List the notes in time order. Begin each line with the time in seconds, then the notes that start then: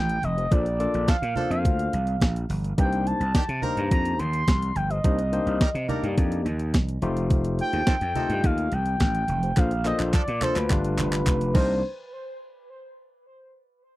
Already playing: A1 G5
0.09 closed hi-hat
0.22 F1 D#5, closed hi-hat, high conga
0.37 G4 C5, closed hi-hat
0.51 A#1 A#3 D4 F4 A4 C5 D5, kick, closed hi-hat, muted conga
0.66 closed hi-hat
0.79 A#3 D4 F4 A4 D5, closed hi-hat
0.94 A#1, closed hi-hat
1.08 F3 D4 A4 F5, kick, snare, closed hi-hat, high conga
1.22 A#2, closed hi-hat
1.36 F3 A#3 D4 F4 A4 C5, closed hi-hat, low conga
1.50 F2 F5, closed hi-hat
1.65 D2, kick, closed hi-hat, muted conga
1.79 closed hi-hat
1.93 C2, closed hi-hat, muted conga
2.07 closed hi-hat
2.20 A#1, kick, snare, closed hi-hat, high conga
2.36 closed hi-hat
2.49 G1, open hi-hat, high conga
2.64 closed hi-hat
2.78 C2 A#3 D4 D#4 G4 B4 G5, kick, closed hi-hat
2.85 C5
2.93 closed hi-hat
3.07 A5, closed hi-hat
3.20 C2, closed hi-hat
3.34 D#3 D4 G4, kick, snare, closed hi-hat, high conga
3.49 C3, closed hi-hat
3.62 G3 A#3 D4 D#4 G4 A#4 C5 A#5, closed hi-hat, low conga
3.77 G2, closed hi-hat
3.91 F2 A#5, kick, closed hi-hat, muted conga
4.05 closed hi-hat
4.19 D#2 C6, closed hi-hat, muted conga
4.33 closed hi-hat
4.47 C2, kick, snare, closed hi-hat, high conga
4.62 closed hi-hat
4.75 G1 G5, closed hi-hat, high conga
4.90 G4 C5 D#5, closed hi-hat
5.04 C2 A#3 D4 D#4 G4 C5, kick, closed hi-hat
5.19 closed hi-hat
5.32 A#3 D4 D#4 G4 C5, closed hi-hat
5.46 C2, closed hi-hat
5.61 G3 D#4 A#4, kick, snare, closed hi-hat, high conga
5.75 C3, closed hi-hat
5.89 G3 A#3 D4 D#4 G4 A#4 D5, closed hi-hat, low conga
6.03 G2, closed hi-hat
6.18 F2, kick, closed hi-hat, muted conga
6.32 closed hi-hat
6.45 D#2, closed hi-hat, muted conga
6.59 closed hi-hat
6.74 C2, kick, snare, closed hi-hat, high conga
6.89 closed hi-hat
7.02 F1 A3 D#4 F4 G4 C5, closed hi-hat, high conga
7.17 closed hi-hat
7.30 kick, closed hi-hat, muted conga
7.45 closed hi-hat
7.59 G5, closed hi-hat
7.73 D#2, closed hi-hat
7.87 D#3 C4 A4, kick, snare, closed hi-hat, high conga
8.01 F2, closed hi-hat
8.15 D#3 A3 C4 D#4 F4 G4 A4 D#5, closed hi-hat, low conga
8.29 G2, closed hi-hat
8.44 D#2 F5, kick, closed hi-hat, muted conga
8.58 closed hi-hat
8.72 C2 G5, closed hi-hat, muted conga
8.86 closed hi-hat
9.00 A1, kick, snare, closed hi-hat, high conga
9.15 closed hi-hat
9.28 F1, closed hi-hat, high conga
9.43 G4 C5, closed hi-hat
9.57 A#1 A#3 D4 F4 A4 C5 F5, kick, clap, closed hi-hat, muted conga
9.71 closed hi-hat
9.85 A#3 D4 F4 A4 C5 D#5, clap, closed hi-hat
9.99 A#1, clap, closed hi-hat
10.13 F3 D4 A4 D5, kick, clap, closed hi-hat, high conga
10.28 A#2, closed hi-hat
10.41 F3 A#3 D4 F4 A4 C5, clap, closed hi-hat, low conga
10.56 D2 B4, clap, closed hi-hat
10.70 G1 A3 D4 F4 G4 B4, kick, clap, closed hi-hat, muted conga
10.84 closed hi-hat
10.98 G1, clap, closed hi-hat, muted conga, low conga
11.12 clap, closed hi-hat
11.26 F1, kick, clap, closed hi-hat, high conga
11.41 closed hi-hat
11.54 C2 G3 A#3 D4 D#4 A#4 C5, kick, crash, muted conga